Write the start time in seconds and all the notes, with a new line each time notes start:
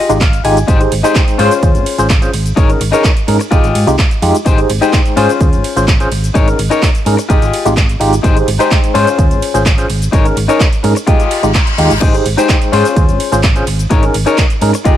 Already playing: D#5
0.09 G#1 G#3 D#4 F4 G4, closed hi-hat, shaker
0.21 F5, kick, clap, closed hi-hat, shaker
0.33 closed hi-hat, shaker
0.44 G#1 G#3 D#4 F4 G4 G#5, muted clean electric guitar stroke, open hi-hat, ride
0.57 closed hi-hat, shaker
0.67 G#1 D#4 G4 G#4 C5, kick, closed hi-hat, shaker
0.80 D#4 G4 G#4 C5, closed hi-hat, shaker
0.91 G#1, muted clean electric guitar stroke, open hi-hat, ride
1.03 G#3 D#4 G4 G#4 C5 G5, closed hi-hat, shaker
1.15 kick, clap, closed hi-hat, shaker
1.28 closed hi-hat, shaker
1.38 G#2 C#4 F4 G#4 C5, open hi-hat, ride
1.51 closed hi-hat, shaker
1.63 D#2 C#4 F4 G#4 C5, kick, closed hi-hat, shaker
1.75 G#1, closed hi-hat, shaker
1.86 open hi-hat, ride
1.98 G#1 C#4 F4 G#4 C5, closed hi-hat, shaker
2.10 kick, clap, closed hi-hat, shaker
2.22 C#4 F4 G#4 C5, closed hi-hat, shaker
2.33 G#1, muted clean electric guitar stroke, open hi-hat, ride
2.46 closed hi-hat, shaker
2.56 G#1 D#4 G#4 A#4 C#5, kick, closed hi-hat, shaker
2.69 C#4 D#4 G#4 A#4, closed hi-hat, shaker
2.80 G#1, muted clean electric guitar stroke, open hi-hat, ride
2.92 C#4 D#4 G#4 A#4 C#5, closed hi-hat, shaker
3.04 kick, clap, closed hi-hat, shaker
3.17 closed hi-hat, shaker
3.27 G#2 C#4 D#4 G#4 A#4, muted clean electric guitar stroke, open hi-hat, ride
3.39 muted clean electric guitar stroke, closed hi-hat, shaker
3.51 G#1 G#3 D#4 F4 G4 G#4 D#5, kick, closed hi-hat, shaker
3.64 G#1, closed hi-hat, shaker
3.75 G#2, open hi-hat, ride
3.87 C2 G#3 D#4 F4 G4, closed hi-hat, shaker
3.99 kick, clap, closed hi-hat, shaker
4.11 closed hi-hat, shaker
4.22 F2 G#3 D#4 F4 G4, muted clean electric guitar stroke, open hi-hat, ride
4.35 closed hi-hat, shaker
4.45 G#1 D#4 G4 G#4 C5, kick, closed hi-hat, shaker
4.58 D#4 G4 G#4 C5, closed hi-hat, shaker
4.69 G#1, muted clean electric guitar stroke, open hi-hat, ride
4.81 G#3 D#4 G4 G#4 C5 G5, closed hi-hat, shaker
4.93 kick, clap, closed hi-hat, shaker
5.06 closed hi-hat, shaker
5.16 G#2 C#4 F4 G#4 C5, open hi-hat, ride
5.29 closed hi-hat, shaker
5.40 D#2 C#4 F4 G#4 C5, kick, closed hi-hat, shaker
5.53 G#1, closed hi-hat, shaker
5.64 open hi-hat, ride
5.76 G#1 C#4 F4 G#4 C5, closed hi-hat, shaker
5.88 kick, clap, closed hi-hat, shaker
6.00 C#4 F4 G#4 C5, closed hi-hat, shaker
6.11 G#1, muted clean electric guitar stroke, open hi-hat, ride
6.24 closed hi-hat, shaker
6.34 G#1 D#4 G#4 A#4 C#5, kick, closed hi-hat, shaker
6.47 C#4 D#4 G#4 A#4, closed hi-hat, shaker
6.58 G#1, muted clean electric guitar stroke, open hi-hat, ride
6.70 C#4 D#4 G#4 A#4 C#5, closed hi-hat, shaker
6.82 kick, clap, closed hi-hat, shaker
6.95 closed hi-hat, shaker
7.05 G#2 C#4 D#4 G#4 A#4, muted clean electric guitar stroke, open hi-hat, ride
7.17 muted clean electric guitar stroke, closed hi-hat, shaker
7.29 G#1 G#3 D#4 F4 G4 G#4 D#5, kick, closed hi-hat, shaker
7.42 G#1, closed hi-hat, shaker
7.53 open hi-hat, ride
7.65 G#1 G#3 D#4 F4 G4, closed hi-hat, shaker
7.77 kick, clap, closed hi-hat, shaker
7.89 closed hi-hat, shaker
8.00 G#1 G#3 D#4 F4 G4, muted clean electric guitar stroke, open hi-hat, ride
8.13 closed hi-hat, shaker
8.23 G#1 D#4 G4 G#4 C5, kick, closed hi-hat, shaker
8.36 D#4 G4 G#4 C5, closed hi-hat, shaker
8.47 G#1, muted clean electric guitar stroke, open hi-hat, ride
8.59 G#3 D#4 G4 G#4 C5 G5, closed hi-hat, shaker
8.71 kick, clap, closed hi-hat, shaker
8.84 closed hi-hat, shaker
8.94 G#2 C#4 F4 G#4 C5, open hi-hat, ride
9.07 closed hi-hat, shaker
9.18 D#2 C#4 F4 G#4 C5, kick, closed hi-hat, shaker
9.31 G#1, closed hi-hat, shaker
9.42 open hi-hat, ride
9.54 G#1 C#4 F4 G#4 C5, closed hi-hat, shaker
9.66 kick, clap, closed hi-hat, shaker
9.78 C#4 F4 G#4 C5, closed hi-hat, shaker
9.89 G#1, muted clean electric guitar stroke, open hi-hat, ride
10.02 closed hi-hat, shaker
10.12 G#1 D#4 G#4 A#4 C#5, kick, closed hi-hat, shaker
10.25 C#4 D#4 G#4 A#4, closed hi-hat, shaker
10.36 G#1, muted clean electric guitar stroke, open hi-hat, ride
10.48 C#4 D#4 G#4 A#4 C#5, closed hi-hat, shaker
10.60 kick, clap, closed hi-hat, shaker
10.73 closed hi-hat, shaker
10.83 G#2 C#4 D#4 G#4 A#4, muted clean electric guitar stroke, open hi-hat, ride
10.95 muted clean electric guitar stroke, closed hi-hat, shaker
11.07 G#3 D#4 F4 G4 G#4 D#5, kick, closed hi-hat, reverse cymbal, shaker
11.20 closed hi-hat, shaker
11.31 open hi-hat, ride
11.43 G#1 G#3 D#4 F4 G4, closed hi-hat, shaker
11.54 kick, clap, closed hi-hat, shaker
11.67 closed hi-hat, shaker
11.78 D#2 G#3 D#4 F4 G4, muted clean electric guitar stroke, open hi-hat, ride
11.90 G#1, closed hi-hat, shaker
12.01 D#4 G4 G#4 C5, kick, closed hi-hat, crash, shaker
12.14 D#4 G4 G#4 C5, closed hi-hat, shaker
12.25 G#1, muted clean electric guitar stroke, open hi-hat, ride
12.37 G#3 D#4 G4 G#4 C5 G5, closed hi-hat, shaker
12.49 kick, clap, closed hi-hat, shaker
12.62 closed hi-hat, shaker
12.72 G#2 C#4 F4 G#4 C5, open hi-hat, ride
12.85 closed hi-hat, shaker
12.96 D#2 C#4 F4 G#4 C5, kick, closed hi-hat, shaker
13.09 G#1, closed hi-hat, shaker
13.20 open hi-hat, ride
13.32 G#1 C#4 F4 G#4 C5, closed hi-hat, shaker
13.43 kick, clap, closed hi-hat, shaker
13.56 C#4 F4 G#4 C5, closed hi-hat, shaker
13.67 G#1, muted clean electric guitar stroke, open hi-hat, ride
13.79 closed hi-hat, shaker
13.90 G#1 D#4 G#4 A#4 C#5, kick, closed hi-hat, shaker
14.03 C#4 D#4 G#4 A#4, closed hi-hat, shaker
14.14 G#1, muted clean electric guitar stroke, open hi-hat, ride
14.26 C#4 D#4 G#4 A#4 C#5, closed hi-hat, shaker
14.38 kick, clap, closed hi-hat, shaker
14.50 closed hi-hat, shaker
14.61 G#2 C#4 D#4 G#4 A#4, muted clean electric guitar stroke, open hi-hat, ride
14.73 muted clean electric guitar stroke, closed hi-hat, shaker
14.85 G#1 G#3 D#4 F4 G4 G#4 D#5, kick, closed hi-hat, shaker